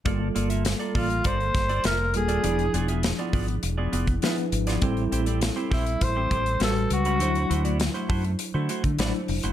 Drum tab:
HH |x-xxxxoxxxxxx-xx|xxxxxxoxx-xxxxxx|xxxxxxoxx-xxxxxx|xxxxxxoxx-xxxxox|
SD |----o-----o-o---|----o-------o--o|----o-o-----o---|----o-------o---|
BD |o-----o-o-o-----|------o----o----|o-----o-o-o-----|------o----o----|